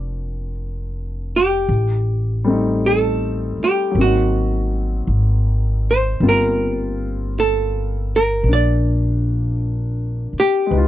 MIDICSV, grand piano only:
0, 0, Header, 1, 2, 480
1, 0, Start_track
1, 0, Tempo, 1127820
1, 717, Time_signature, 4, 2, 24, 8
1, 4630, End_track
2, 0, Start_track
2, 0, Title_t, "Grand piano"
2, 0, Program_c, 0, 0
2, 0, Control_c, 0, 64, 127
2, 0, Note_on_c, 0, 53, 46
2, 0, Note_on_c, 0, 58, 43
2, 0, Note_on_c, 0, 60, 44
2, 0, Note_on_c, 0, 62, 45
2, 714, Note_off_c, 0, 53, 0
2, 716, Note_off_c, 0, 58, 0
2, 716, Note_off_c, 0, 60, 0
2, 717, Note_off_c, 0, 62, 0
2, 723, Control_c, 0, 64, 0
2, 789, Control_c, 0, 64, 127
2, 1040, Note_on_c, 0, 55, 54
2, 1046, Note_on_c, 0, 57, 50
2, 1052, Note_on_c, 0, 60, 45
2, 1062, Note_on_c, 0, 63, 57
2, 1666, Note_on_c, 0, 54, 44
2, 1680, Note_off_c, 0, 55, 0
2, 1682, Note_off_c, 0, 57, 0
2, 1683, Note_on_c, 0, 58, 39
2, 1684, Control_c, 0, 64, 0
2, 1686, Note_off_c, 0, 60, 0
2, 1691, Note_off_c, 0, 63, 0
2, 1697, Note_on_c, 0, 60, 39
2, 1718, Note_on_c, 0, 63, 45
2, 1756, Control_c, 0, 64, 127
2, 2632, Note_off_c, 0, 54, 0
2, 2641, Note_off_c, 0, 58, 0
2, 2644, Control_c, 0, 64, 0
2, 2645, Note_off_c, 0, 60, 0
2, 2646, Note_on_c, 0, 55, 42
2, 2648, Note_on_c, 0, 58, 43
2, 2651, Note_on_c, 0, 60, 43
2, 2651, Note_on_c, 0, 65, 52
2, 2658, Note_off_c, 0, 63, 0
2, 2716, Control_c, 0, 64, 127
2, 3592, Note_off_c, 0, 58, 0
2, 3599, Note_on_c, 0, 58, 36
2, 3611, Note_on_c, 0, 62, 42
2, 4539, Note_on_c, 0, 56, 46
2, 4554, Note_on_c, 0, 71, 47
2, 4558, Note_off_c, 0, 58, 0
2, 4561, Note_off_c, 0, 55, 0
2, 4562, Control_c, 0, 64, 0
2, 4563, Note_off_c, 0, 60, 0
2, 4563, Note_off_c, 0, 65, 0
2, 4564, Note_off_c, 0, 62, 0
2, 4567, Note_on_c, 0, 63, 47
2, 4586, Note_on_c, 0, 65, 59
2, 4630, Note_off_c, 0, 56, 0
2, 4630, Note_off_c, 0, 63, 0
2, 4630, Note_off_c, 0, 65, 0
2, 4630, Note_off_c, 0, 71, 0
2, 4630, End_track
0, 0, End_of_file